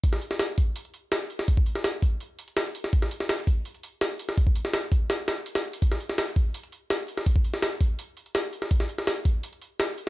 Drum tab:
HH |o-o-oxo-oxo-o-o-|o-o-o-o-o-oxoxo-|o-o-oxo-oxo-o-o-|o-o-o-o-oxoxooxo|
SD |-o-oo-------o--o|---oo-------o--o|-o-oo-------o--o|---oo---o-o--o--|
BD |o-----o---------|oo----o---------|o-----o---------|oo----o---------|

HH |o-o-oxo-oxo-o-o-|o-o-o-o-o-oxoxo-|o-o-oxo-oxo-o-o-|
SD |-o-oo-------o--o|---oo-------o--o|-o-oo-------o---|
BD |o-----o---------|oo----o---------|o-----o---------|